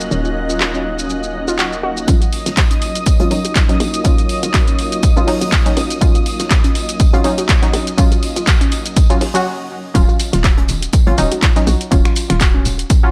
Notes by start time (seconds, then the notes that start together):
Already playing: F#3 A#3 C#4 D#4 F4 F#4 D#5 F#6
0.01 shaker
0.11 D#1 C#4, shaker
0.25 F4, shaker
0.50 F4, shaker
0.60 F#4, clap, shaker
0.74 C#4, shaker
0.99 shaker
1.10 shaker
1.23 shaker
1.48 F4, shaker
1.59 F#4, clap, shaker
1.73 shaker
1.83 F#4
1.97 shaker
2.07 D#1 F#3 A#3 C#4 D#4 F4 C#5 D#6, kick, closed hi-hat, tambourine, shaker
2.22 F4, closed hi-hat, shaker
2.32 open hi-hat, tambourine
2.46 D#1 F4, snare, closed hi-hat, shaker
2.57 F#4, kick, snare, clap, closed hi-hat, tambourine, shaker
2.71 C#4, closed hi-hat, shaker
2.82 open hi-hat, tambourine
2.95 closed hi-hat, shaker
3.06 kick, closed hi-hat, tambourine, shaker
3.20 G#1 F#3 C#4 F4, closed hi-hat, shaker
3.31 D#1 F#3 C#4 D#4, open hi-hat, tambourine
3.45 F#4, closed hi-hat, shaker
3.55 F4, kick, snare, clap, closed hi-hat, tambourine, shaker
3.69 F#3 C#4 D#4, snare, closed hi-hat, shaker
3.80 A#1 F#4, open hi-hat, tambourine
3.94 closed hi-hat, shaker
4.04 D#1 F#3 C#4 F4, kick, closed hi-hat, tambourine, shaker
4.18 F4, closed hi-hat, shaker
4.29 open hi-hat, tambourine
4.43 D#1 F4, closed hi-hat, shaker
4.54 F#4, kick, snare, clap, closed hi-hat, tambourine, shaker
4.68 C#4, closed hi-hat, shaker
4.79 open hi-hat, tambourine
4.92 closed hi-hat, shaker
5.03 kick, closed hi-hat, tambourine, shaker
5.16 C#2 F#3 C#4 F4, shaker
5.27 F#3 C#4 D#4, open hi-hat
5.41 D#1 F#4, closed hi-hat, shaker
5.52 F4, kick, snare, clap, closed hi-hat, tambourine, shaker
5.66 F#3 C#4 D#4, snare, closed hi-hat, shaker
5.77 C#2 F#4, open hi-hat, tambourine
5.90 closed hi-hat, shaker
6.01 D#1 F#3 C#4 F4 D#5, kick, closed hi-hat, tambourine, shaker
6.15 F4, closed hi-hat, shaker
6.26 open hi-hat, tambourine
6.39 D#1 F4, snare, closed hi-hat, shaker
6.51 F#4, kick, snare, clap, closed hi-hat, tambourine, shaker
6.64 C#4, closed hi-hat, shaker
6.75 open hi-hat, tambourine
6.89 closed hi-hat, shaker
7.00 kick, closed hi-hat, tambourine, shaker
7.13 G#1 F#3 C#4 F4, closed hi-hat, shaker
7.24 D#1 F#3 C#4 D#4, open hi-hat, tambourine
7.38 F#4, closed hi-hat, shaker
7.48 F4, kick, snare, clap, closed hi-hat, tambourine, shaker
7.62 F#3 C#4 D#4, snare, closed hi-hat, shaker
7.73 A#1 F#4, open hi-hat, tambourine
7.87 closed hi-hat, shaker
7.97 D#1 F#3 C#4 F4, kick, closed hi-hat, tambourine, shaker
8.12 F4, closed hi-hat, shaker
8.23 open hi-hat, tambourine
8.36 D#1 F4, closed hi-hat, shaker
8.46 F#4, kick, snare, clap, closed hi-hat, tambourine, shaker
8.61 C#4, closed hi-hat, shaker
8.71 open hi-hat, tambourine
8.86 closed hi-hat, shaker
8.97 kick, closed hi-hat, tambourine, shaker
9.10 F#3 C#4 F4, closed hi-hat, shaker
9.21 D#2, open hi-hat
9.34 F#3 C#4 F#4, closed hi-hat, shaker
9.94 D#1 F#3 C#4 F4, kick, closed hi-hat, tambourine, shaker
10.09 F4, shaker
10.19 open hi-hat, tambourine, shaker
10.33 D#1 F4, snare, closed hi-hat, shaker
10.44 F#4, kick, snare, clap, closed hi-hat, tambourine, shaker
10.58 C#4, closed hi-hat, high bongo
10.68 open hi-hat, tambourine, high conga, low conga, shaker
10.82 closed hi-hat, shaker
10.93 kick, closed hi-hat, tambourine, high bongo, shaker
11.07 G#1 F#3 C#4 F4, closed hi-hat
11.18 D#1 F#3 C#4 D#4, open hi-hat, tambourine, shaker
11.31 F#4, closed hi-hat, high bongo, shaker
11.42 F4, kick, snare, clap, closed hi-hat, tambourine, shaker
11.56 F#3 C#4 D#4, snare, closed hi-hat, shaker
11.67 A#1 F#4, open hi-hat, tambourine, shaker
11.81 closed hi-hat, shaker
11.91 D#1 F#3 C#4 F4, kick, closed hi-hat, tambourine, shaker
12.05 F4, finger snap, shaker
12.15 open hi-hat, tambourine, shaker
12.30 D#1 F4, finger snap, closed hi-hat, shaker
12.40 F#4, kick, snare, clap, closed hi-hat, tambourine, shaker
12.54 C#4, high bongo
12.65 open hi-hat, tambourine, low conga, shaker
12.79 closed hi-hat, shaker
12.90 kick, closed hi-hat, tambourine, shaker
13.03 F#3 C#4 F4